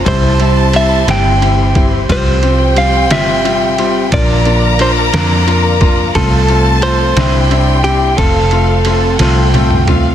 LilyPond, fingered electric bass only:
\new Staff \with { instrumentName = "Fingered electric bass" } { \clef bass \time 6/8 \key c \mixolydian \tempo 4. = 59 c,4. g,,4. | c,4. g,,4. | bes,,4. f,4. | c,4. c,4. |
f,,4. c,4. | }